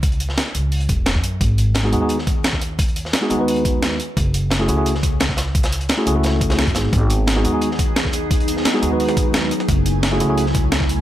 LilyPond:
<<
  \new Staff \with { instrumentName = "Ambient pad" } { \time 4/4 \key fis \dorian \tempo 4 = 174 << { r1 | r1 | r1 | r1 |
r1 | <b dis' gis'>1~ | <b dis' gis'>2.~ <b dis' gis'>8 <a e' gis''>8~ | <a e' gis''>1 | } \\ { r1 | r1 | r1 | r1 |
r1 | fis1~ | fis1~ | fis1 | } >> }
  \new Staff \with { instrumentName = "Tine electric piano" } { \time 4/4 \key fis \dorian r1 | r4 r16 <gis b dis' fis' gis'>16 <gis b dis' fis' gis'>16 <gis b dis' fis' gis'>8 r4. r16 | r4 r16 <gis b dis' fis' gis'>16 <gis b dis' fis' gis'>16 <gis b dis' fis' b'>4.~ <gis b dis' fis' b'>16 r8 | r4 r16 <a cis' e' fis' gis'>16 <a cis' e' fis' gis'>16 <a cis' e' fis' gis'>8 r4. r16 |
r4 r16 <a cis' e' fis' gis'>16 <a cis' e' fis' gis'>16 <a cis' e' fis' a'>4 <a cis' e' fis' gis'>8 r16 <gis b dis' fis' gis'>8~ | <gis b dis' fis' gis'>4~ <gis b dis' fis' gis'>16 <gis b dis' fis' gis'>16 <gis b dis' fis' gis'>16 <gis b dis' fis' gis'>8 r4. r16 | r4 r16 <gis b dis' fis' gis'>16 <gis b dis' fis' gis'>16 <gis b dis' fis' b'>4.~ <gis b dis' fis' b'>16 r8 | r4 r16 <a cis' e' fis' gis'>16 <a cis' e' fis' gis'>16 <a cis' e' fis' gis'>8 r4. r16 | }
  \new Staff \with { instrumentName = "Upright bass" } { \clef bass \time 4/4 \key fis \dorian cis,4 r8 cis,4 e,,8. fis,8. | gis,,4. dis,2~ dis,8~ | dis,4 r8 dis,2 r8 | fis,,4. cis,2~ cis,8~ |
cis,4 r8 cis,4.~ cis,16 fis,16 gis,,8 | gis,,4. dis,2~ dis,8~ | dis,4 r8 dis,2 r8 | fis,,4. cis,2~ cis,8 | }
  \new DrumStaff \with { instrumentName = "Drums" } \drummode { \time 4/4 <hh bd>16 hh16 hh16 sn16 <hh sn>8 hh8 <hh hho>16 hh16 <hh bd>8 <hh sn>16 bd16 hh8 | <hh bd>8 hh8 <hh sn>8 hh8 hh16 sn16 <hh bd>8 <hh sn>16 <bd sn>16 hh8 | <hh bd>16 hh16 hh16 sn16 <hh sn>8 hh8 <hh hho>16 hh16 <hh bd>8 <hh sn>8 hh8 | <hh bd>8 hh8 <hh sn>8 hh8 hh16 sn16 <hh bd>8 <hh sn>16 <bd sn>16 <hh sn>8 |
<hh bd>16 <hh sn>16 hh16 hh16 <hh sn>8 hh8 <hh sn>8 <hh bd>16 <hh sn>16 <hh sn>16 <hh bd>16 <hh sn>8 | <hh bd>8 hh8 <hh sn>8 hh8 hh16 sn16 <hh bd>8 <hh sn>16 <bd sn>16 hh8 | <hh bd>16 hh16 hh16 sn16 <hh sn>8 hh8 <hh hho>16 <hh sn>16 <hh bd>8 <hh sn>8 hh16 sn16 | <hh bd>8 hh8 <hh sn>8 hh8 hh16 sn16 <hh bd>8 <hh sn>16 <bd sn>16 hh8 | }
>>